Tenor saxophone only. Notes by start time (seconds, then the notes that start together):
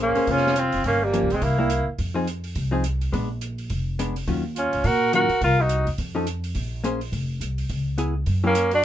0.02 A#3
0.31 C#4
0.58 C4
0.88 A#3
1.04 G3
1.34 G#3
1.43 A#3
4.58 C#4
4.86 F#4
5.15 F#4
5.44 F4
5.61 D#4
8.46 A#3
8.74 D4